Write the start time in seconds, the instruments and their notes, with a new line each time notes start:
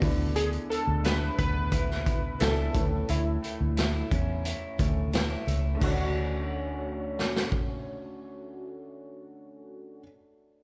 Already playing: clean electric guitar B3, upright piano F#4 D5
0.00 fingered electric bass D2, clean electric guitar D3, upright piano B3 D4 E4, kick, open hi-hat
0.04 upright piano B4
0.36 clean electric guitar D3, synth keys G#4, closed hi-hat
0.53 closed hi-hat
0.70 clean electric guitar G#3, synth keys A4, closed hi-hat
0.87 fingered electric bass D2
1.04 clean electric guitar E4, synth keys B4, snare, closed hi-hat
1.38 fingered electric bass D2, clean electric guitar B3, synth keys B4, kick, closed hi-hat
1.72 clean electric guitar E4, kick, closed hi-hat
1.91 snare
2.06 kick, closed hi-hat
2.39 fingered electric bass C#2, upright piano B3 D4 E4 G#5, clean electric guitar E4, synth keys A4, snare, closed hi-hat
2.72 fingered electric bass D2, clean electric guitar A2, upright piano A3 C#4 E4, kick, closed hi-hat
2.77 upright piano B4
3.08 fingered electric bass D2, clean electric guitar A2, synth keys E4, closed hi-hat
3.43 clean electric guitar A3, closed hi-hat
3.61 fingered electric bass D2
3.77 clean electric guitar E4, snare, closed hi-hat
4.11 fingered electric bass E2, clean electric guitar C#4, kick, closed hi-hat
4.45 clean electric guitar E4, closed hi-hat
4.79 fingered electric bass D2, clean electric guitar A3, kick, closed hi-hat
5.12 upright piano A3 C#4 E4 B4, clean electric guitar E4, snare, closed hi-hat
5.47 fingered electric bass C#2, clean electric guitar A3, closed hi-hat
5.75 clean electric guitar D3, upright piano A3
5.80 fingered electric bass D2, clean electric guitar A3, upright piano D4 F#4, kick, crash
5.84 synth keys F#4, upright piano C#5
5.90 clean electric guitar C#4
5.95 clean electric guitar F#4
7.19 snare
7.36 snare
7.52 kick